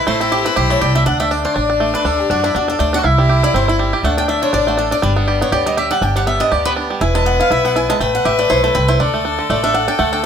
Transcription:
0.07 A1 A3 E4 C5
0.20 C4 A4
0.32 G4
0.45 C4 B4
0.56 B1 G4 C5
0.70 A3 C#5
0.81 C2 G4 D5
0.95 A3 E5
1.06 D2 D4 F#5
1.20 A3 E5
1.31 D4 D5
1.45 D4 C5
1.56 A1 D4 D5
1.70 D4
1.80 A3
1.94 D4 B4
2.04 D2 D4 A4
2.20 G4
2.30 F#2 D4 F#4
2.44 D4 E4
2.55 E2 D4 F#4
2.68 D4 A4
2.79 D2 A3 D5
2.93 D4 F#5
2.98 F#4
3.04 C2 E4 E5
3.18 G3
3.29 G4
3.43 E4 D5
3.54 G1 C4 C5
3.68 E4
3.79 G3
3.93 G4
4.03 D2 A3 D4 F#5
4.18 D4 G5
4.28 A3 E5
4.42 D3 C#5
4.53 A1 D4 D5
4.67 A3 F#4
4.77 D4 A4
4.91 D4 D5
5.02 G1 G3 D4 B4
5.16 B3
5.28 G4
5.41 B3 C#5
5.52 D2 G4 D5
5.66 G3 D#5
5.77 G4 E5
5.91 G3 F#5
6.01 G1 D4 G4 G5
6.16 G3 F#5
6.27 B3 E5
6.40 D4 D#5
6.51 D2 G4 D5
6.65 B3 B4
6.76 D4
6.90 G3
7.01 E1 E4 B4 G#5
7.15 G#3 A5
7.26 B3 F#5
7.40 E4 F5
7.50 B1 E4 E5
7.65 B3 F#5
7.76 E4 G#5
7.89 G#3 A5
8.00 A1 A3 B4 G5
8.15 F#5
8.25 A1 G4 E5
8.39 A3 D5
8.50 B1 E4 C5
8.64 A3 A4
8.75 C2 C4 B4
8.88 E4 C5
9.00 D2 D4 A4 D5
9.14 A3
9.25 D4
9.39 D3
9.50 A1 A3 D5
9.63 D4 E5
9.74 D4 F#5
9.88 D4 G5
9.99 D2 A3 F#5
10.13 D4 G5

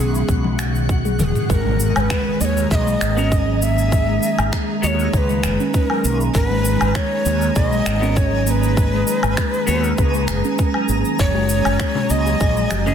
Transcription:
Already playing: C#3 G#3 F#4 G#4 E5 F#5
0.00 B1 B3
0.15 shaker
0.28 B1 F#3, kick, shaker
0.44 G#3, high conga
0.59 finger snap, shaker
0.75 D#3, shaker
0.89 kick, shaker
1.05 G#4, high tom, shaker
1.19 E1 D#3 A#4, mid tom, high conga, shaker
1.24 G#4
1.35 mid tom, shaker
1.49 G#1 G#3 G#4 B4 A#5, kick, impact, shaker
1.54 A#4
1.66 G#3
1.80 shaker
1.93 G#1 D#3 G#3 C#5, low woodblock, shaker
2.00 B4
2.10 finger snap, kick, shaker
2.27 G#3
2.41 D#2 A#3 D#5, shaker
2.45 C#5
2.54 A#5, shaker
2.71 B1 G#4 E5, kick, shaker
2.75 D#5
2.87 G#3, shaker
3.01 G#1, finger snap, shaker
3.17 B3 C#4 F#4 A#4, shaker
3.32 kick, shaker
3.48 F#3
3.62 A#3 E5, shaker
3.78 shaker
3.92 G#3, kick, shaker
4.08 G#3
4.23 shaker
4.39 G#1 G#3, low woodblock, shaker
4.53 finger snap, kick, shaker
4.69 G#3
4.82 D#2 A#3 B3 F#4 C#5 D#5, shaker
4.87 C#5
4.99 shaker
5.13 C#2 G#4 C#5, kick, shaker
5.17 B4
5.29 G#3, shaker
5.43 F#1, finger snap, shaker
5.60 C#4, shaker
5.74 B4, kick, shaker
5.85 A#4
5.90 F#3, low woodblock
6.05 B1 A#3, shaker
6.21 shaker
6.34 G#1 G#3 A#4, kick, shaker
6.45 B4
6.51 G#3
6.65 shaker
6.81 G#1 G#3, low woodblock, shaker
6.95 C#5, finger snap, kick, shaker
7.11 G#3
7.26 D#2 A#3, shaker
7.42 shaker
7.56 B1 G#4 D#5, kick, shaker
7.72 G#3, shaker
7.86 G#1, finger snap, shaker
8.01 B3 C#4 F#4 A#4, shaker
8.16 C#5, kick, shaker
8.33 F#3
8.47 A#3 B4 C#5, shaker
8.63 shaker
8.77 G#3, kick, shaker
8.93 G#3
9.07 shaker
9.23 G#1 G#3, low woodblock, shaker
9.37 finger snap, kick, shaker
9.53 G#3, shaker
9.67 D#2 A#3 B3 F#4 C#5, shaker
9.84 shaker
9.98 C#2 G#4, kick, shaker
10.14 G#3, shaker
10.28 F#1, finger snap, shaker
10.44 C#4, shaker
10.58 kick, shaker
10.74 F#3, low woodblock
10.89 G#1 A#3, shaker
11.05 shaker
11.19 F#1 F#3 C#5, kick, shaker
11.35 G#3, high bongo
11.49 C#4, shaker
11.65 F#1 G#3, low woodblock, shaker
11.80 finger snap, kick, shaker
11.95 G#3, low conga
12.10 C#2 A#3 D#5, shaker
12.26 high bongo, shaker
12.40 A#1 G#4, kick, shaker
12.46 G#4
12.57 G#3, shaker
12.71 F#1, finger snap, high bongo, high conga, shaker
12.86 A#3 C#4 E4 G#4, low conga, shaker

